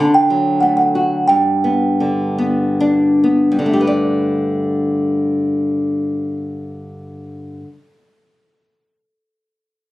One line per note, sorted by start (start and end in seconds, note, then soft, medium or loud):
0.00 1.25 D3 medium
0.00 0.15 A5 medium
0.14 0.63 G5 medium
0.30 1.26 F#3 soft
0.61 1.27 A3 soft
0.61 0.68 F#5 medium
0.77 1.30 F#5 medium
0.95 1.28 F#4 soft
1.28 3.50 G2 medium
1.28 2.75 G5 medium
1.64 2.37 B3 soft
2.00 3.57 D3 soft
2.38 3.22 B3 soft
2.80 3.68 D4 soft
3.24 3.66 B3 soft
3.52 7.60 G2 medium
3.59 7.67 D3 soft
3.66 7.74 A3 soft
3.73 3.87 G4 soft
3.81 7.89 B4 soft
3.87 7.96 D5 medium